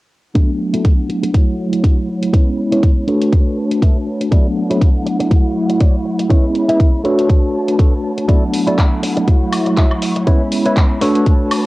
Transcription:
0.34 tine electric piano F#3 A3 B3 D4, clean electric guitar D4 E4 F#4 A4, violin section E4 A4 F#5, kick, closed hi-hat
0.60 muted clean electric guitar stroke
0.73 clean electric guitar D4 E4 F#4 A4, closed hi-hat
0.85 kick, closed hi-hat
1.09 muted clean electric guitar stroke, closed hi-hat
1.23 muted clean electric guitar stroke, closed hi-hat
1.34 tine electric piano F#3 A3 E4 C#5, violin section C#5, kick, closed hi-hat
1.73 muted clean electric guitar stroke, closed hi-hat
1.83 clean electric guitar D4 E4 F#4 C#5, kick, closed hi-hat
2.09 muted clean electric guitar stroke
2.22 muted clean electric guitar stroke, closed hi-hat
2.33 tine electric piano G#3 B3 C#4 E4, clean electric guitar E4 B4 C#5, violin section B5, kick, closed hi-hat
2.58 muted clean electric guitar stroke
2.72 clean electric guitar E4 B4 C#5, closed hi-hat
2.83 kick, closed hi-hat
3.07 tine electric piano A3 D4 F#4 C#5, clean electric guitar D4 A4 B4 C#5, violin section B4 A5, closed hi-hat
3.22 closed hi-hat
3.33 kick, closed hi-hat
3.71 muted clean electric guitar stroke, closed hi-hat
3.82 clean electric guitar D4 A4 B4 E5, kick, closed hi-hat
4.07 muted clean electric guitar stroke
4.21 muted clean electric guitar stroke, closed hi-hat
4.31 tine electric piano F#3 A3 B3 D4, violin section E4 A4 F#5, clean electric guitar E4 F#4 A4 D5, kick, closed hi-hat
4.56 muted clean electric guitar stroke
4.70 clean electric guitar E4 F#4 A4 C#5, closed hi-hat
4.81 kick, closed hi-hat
5.06 muted clean electric guitar stroke, closed hi-hat
5.20 muted clean electric guitar stroke, closed hi-hat
5.30 tine electric piano F#3 A3 E4, violin section C#6, muted clean electric guitar stroke, kick, closed hi-hat
5.70 muted clean electric guitar stroke, closed hi-hat
5.80 clean electric guitar E4 F#4 C#5 D5, kick, closed hi-hat
6.05 muted clean electric guitar stroke
6.19 muted clean electric guitar stroke, closed hi-hat
6.29 tine electric piano G#3 B3 C#4 E4, clean electric guitar E4 B4 C#5, violin section C#5 B5, kick, closed hi-hat
6.55 muted clean electric guitar stroke, closed hi-hat
6.69 clean electric guitar E4 B4 E5, closed hi-hat
6.80 kick, closed hi-hat
7.04 tine electric piano A3 D4 F#4 C#5, clean electric guitar D4 A4 B4 C#5, violin section B4 A5, closed hi-hat
7.19 closed hi-hat
7.29 kick, closed hi-hat
7.68 muted clean electric guitar stroke, closed hi-hat
7.79 clean electric guitar D4 A4 B4 C#5, kick, closed hi-hat
8.04 muted clean electric guitar stroke
8.18 muted clean electric guitar stroke, closed hi-hat
8.28 tine electric piano F#3 A3 B3 D4, violin section E4 A4 F#5, clean electric guitar E4 F#4 A4 D5, kick, closed hi-hat
8.53 muted clean electric guitar stroke, open hi-hat
8.67 clean electric guitar E4 F#4 A4 D5, closed hi-hat
8.78 kick, clap, closed hi-hat
9.03 muted clean electric guitar stroke, open hi-hat
9.17 muted clean electric guitar stroke, closed hi-hat
9.27 tine electric piano F#3 A3 E4, violin section C#6, muted clean electric guitar stroke, kick, closed hi-hat
9.53 open hi-hat, high woodblock
9.66 muted clean electric guitar stroke, closed hi-hat
9.77 clean electric guitar E4 F#4 C#5 E5, kick, clap, closed hi-hat
9.91 high woodblock
10.02 muted clean electric guitar stroke, open hi-hat
10.16 muted clean electric guitar stroke, closed hi-hat
10.26 tine electric piano G#3 B3 C#4 E4, clean electric guitar E4 B4 C#5, violin section C#5 B5, kick, closed hi-hat
10.52 muted clean electric guitar stroke, open hi-hat
10.65 clean electric guitar E4 B4 C#5, closed hi-hat
10.76 kick, clap, closed hi-hat
11.01 tine electric piano A3 D4 F#4 C#5, clean electric guitar D4 A4 B4 C#5, violin section B4 C#5 A5, open hi-hat
11.15 closed hi-hat
11.26 kick, closed hi-hat
11.51 open hi-hat, high woodblock

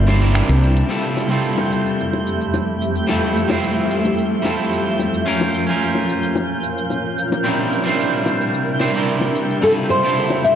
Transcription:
Already playing: fretless electric bass G1, ambient pad C3 G3 A#3 D4 E4, synth texture G6
0.07 clean electric guitar G3 C4 D4 E4 C5, high bongo, cabasa
0.19 clean electric guitar G3 C4 D4 E4 A#4, closed hi-hat, cabasa
0.35 finger snap, cabasa
0.49 fretless electric bass C2, closed hi-hat, high bongo, cabasa
0.63 cabasa
0.77 closed hi-hat, cabasa
0.89 ambient pad F2 F3 A3 G4 E5, clean electric guitar G3 C4 E4 F4 A4, synth texture G6, cabasa
1.17 high bongo, cabasa
1.29 clean electric guitar G3 C4 E4 F4, cabasa
1.33 clean electric guitar A4
1.45 cabasa
1.58 high bongo
1.72 cabasa
1.86 cabasa
2.00 cabasa
2.13 high bongo
2.27 cabasa
2.41 cabasa
2.54 high bongo, cabasa
2.82 cabasa
2.96 cabasa
3.07 clean electric guitar G3 C4 E4 F4 A4, high bongo, cabasa
3.37 cabasa
3.48 clean electric guitar G3 C4 E4 F4 C5, high bongo, cabasa
3.64 cabasa
3.91 cabasa
4.05 high bongo, cabasa
4.18 cabasa
4.42 clean electric guitar G3 C4 E4 F4, high bongo, cabasa
4.46 clean electric guitar A4
4.59 cabasa
4.73 cabasa
4.99 high bongo, cabasa
5.14 cabasa
5.26 ambient pad A#2 C#4 A#4 F5, clean electric guitar C#4 F4 A#4, cabasa
5.41 high bongo
5.54 cabasa
5.67 clean electric guitar C#4 F4 A#4, cabasa
5.82 cabasa
5.95 high bongo
6.09 cabasa
6.23 cabasa
6.36 high bongo, cabasa
6.64 cabasa
6.78 cabasa
6.90 high bongo, cabasa
7.18 cabasa
7.32 high bongo, cabasa
7.44 ambient pad C3 G3 D4 E5, clean electric guitar G3 C4 D4 E4 A#4, cabasa
7.73 cabasa
7.83 clean electric guitar G3 C4 D4 E4 C5, high bongo, cabasa
8.00 cabasa
8.26 high bongo, cabasa
8.41 cabasa
8.54 cabasa
8.79 clean electric guitar G3 C4 D4 E4 C5, high bongo, cabasa
8.94 clean electric guitar G3 C4 D4 E4 A#4, cabasa
9.09 cabasa
9.21 high bongo
9.36 cabasa
9.50 cabasa
9.62 ambient pad F2 F3 A3 G4, clean electric guitar G3 C4 E4 F4 A4, nylon-string guitar A4, cabasa
9.89 nylon-string guitar C5, high bongo, cabasa
10.03 clean electric guitar G3 C4 E4 F4 A4, cabasa
10.18 cabasa
10.30 high bongo
10.44 nylon-string guitar E5, cabasa

